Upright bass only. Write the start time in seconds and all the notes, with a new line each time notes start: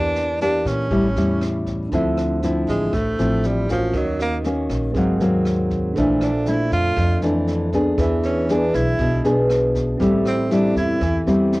Already playing: E2
0.66 A#2
0.91 A1
1.17 E2
1.92 D2
2.68 A1
2.93 A1
3.20 A1
3.94 D#2
4.70 A#1
4.94 G#1
5.21 D#2
5.96 A#1
6.72 F2
6.97 F2
7.22 F2
7.98 E2
8.74 B1
8.99 B1
9.25 B1
10.00 A1
10.76 E2
11.01 E2
11.27 E2